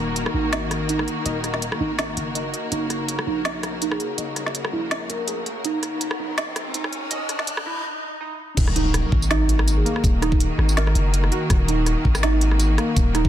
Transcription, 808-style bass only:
Already playing: D#1
0.34 G#1
1.25 D#1
1.80 G#1
2.17 F#1
2.72 F#1
3.27 A#1
4.18 F#1
4.73 A#1
5.10 A#1
5.64 F#1
6.19 A#1
7.11 F#1
7.66 A#1
8.57 D#1
9.12 G#1
10.04 D#1
10.58 G#1
10.95 F#1
11.50 D#1
12.05 G#1
12.96 D#1

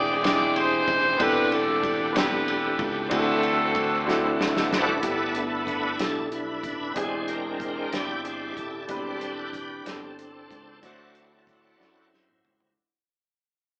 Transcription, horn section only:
Already playing: G4 G#4 D5
0.25 D5
0.57 G4 G#4 C5
1.21 D4 G4 B4
1.53 G4 A4 D5
2.17 D4 G4 B4
3.13 C4 F#4 A4

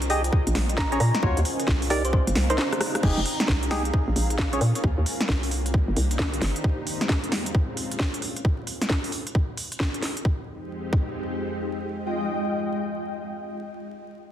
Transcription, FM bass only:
Already playing: C2
0.47 A#1
0.55 A#1
1.00 A#2
1.23 D#2
1.37 D#2
1.68 C2
2.27 G1
2.36 C2
3.03 F1
3.18 F1
3.49 C2
4.08 A#1
4.16 A#1
4.61 A#2
4.84 D#2
4.98 D#2
5.29 C2
5.88 G1
5.97 C2
6.42 G1

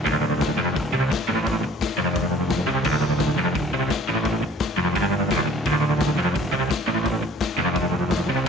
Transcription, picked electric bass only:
0.07 D1
0.58 F1
0.76 D1
0.94 C2
1.12 muted picked electric bass stroke
1.31 A1
1.65 muted picked electric bass stroke
1.99 F1
2.68 C2
2.85 D1
3.38 F1
3.56 D1
3.72 C2
3.91 muted picked electric bass stroke
4.09 A1
4.43 muted picked electric bass stroke
4.78 F1
4.95 G1
5.31 D1
5.46 D1
5.66 D1
6.17 F1
6.36 D1
6.52 C2
6.71 muted picked electric bass stroke
6.88 A1
7.23 muted picked electric bass stroke
7.57 F1
8.28 C2

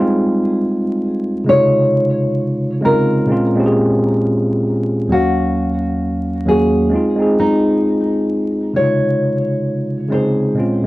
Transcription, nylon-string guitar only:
Already playing: G#4
1.49 C#5
2.85 A#4
5.12 F#4
6.48 G#4
7.40 D#4
8.76 C#5
10.12 C5

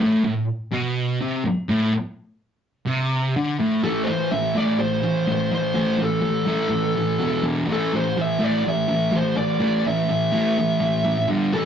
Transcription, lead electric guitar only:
3.84 A4
4.04 C5
4.31 E5
4.57 D5
4.80 C5
5.32 C5
5.54 C5
6.03 A4
7.72 A4
7.95 C5
8.21 E5
8.44 D5
8.69 E5
9.16 C5
9.37 D5
9.87 E5
11.53 A4

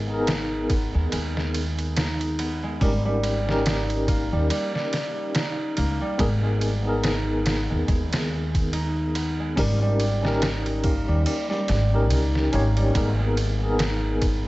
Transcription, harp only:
Already playing: G#3
0.28 D#4
0.70 B3
0.94 G#3
1.12 G#3
1.36 G#3
1.96 D#4
2.39 B3
2.63 G#3
2.81 G3
3.05 G3
3.66 D#4
4.08 A#3
4.32 G3
4.51 G3
4.75 G3
5.35 D#4
5.77 A#3
6.01 G3
6.19 G#3
6.44 G#3
7.04 D#4
7.45 B3
7.70 G#3
7.88 G#3
8.12 G#3
8.73 D#4
9.15 B3
9.40 G#3
9.57 G3
9.82 G3
10.42 D#4
10.84 A#3
11.08 G3
11.26 G3
11.50 G3
12.10 D#4
12.53 A#3
12.77 G3
12.95 G#3
13.19 G#3
13.80 D#4
14.22 B3

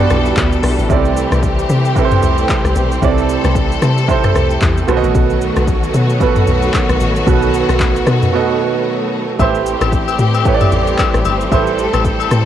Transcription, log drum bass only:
0.10 B1
0.37 D2
0.63 B1
0.79 A1
0.90 C2
1.32 C2
1.70 C3
2.23 C2
2.65 C2
2.76 B1
3.02 C2
3.44 C2
3.82 C3
4.35 C2
4.62 E2
4.88 B1
5.03 A1
5.15 B1
5.57 B1
5.94 B2
6.47 B1
6.89 B1
7.00 A1
7.27 B1
7.69 B1
8.07 B2
9.40 A1
9.81 A1
10.19 A2
10.72 A1
11.14 A1
11.25 G1
11.52 A1
11.94 A1
12.31 A2

